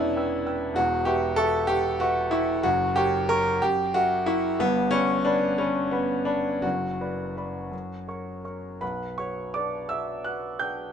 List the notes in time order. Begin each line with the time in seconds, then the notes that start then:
Already playing: E1 E2 B3 C#4 D4 E4 B4 G5 E6
0.16 B4 G5 E6
0.46 B4 G5 E6
0.73 E1 E2 F#4
1.05 G4 B4 E5 C#6
1.36 A4 B4 E5 C#6
1.67 G4 B4 E5 C#6
2.00 F#4 B4 E5 C#6
2.31 E4 B4 E5 C#6
2.63 F#1 F#2 F#4
2.96 G4 A#4 C#5 C#6
3.29 A#4 C#5 C#6
3.62 F#2 G4
3.94 F#4 A#4 E5 C#6
4.26 E4 A#4 E5 C#6
4.59 G1 G2 B3
4.91 C#4 B4 D5 B5
5.25 D4 B4 D5 B5
5.58 C#4 B4 D5 B5
5.91 B3 B4 D5 B5
6.25 D4 B4 D5 B5
6.61 F#1 F#2 F#4
7.01 B4 D5 B5
7.37 B4 D5 B5
7.71 F#2
8.08 A#4 C#5 C#6
8.44 A#4 C#5 C#6
8.81 B1 B4 F#5 B5
9.18 F#4 B4 C#5 C#6
9.54 D4 F#4 B4 D5 D6
9.89 D4 F#4 B4 E5 E6
10.24 F#4 B4 F#5 F#6
10.59 D4 F#4 B4 G5 G6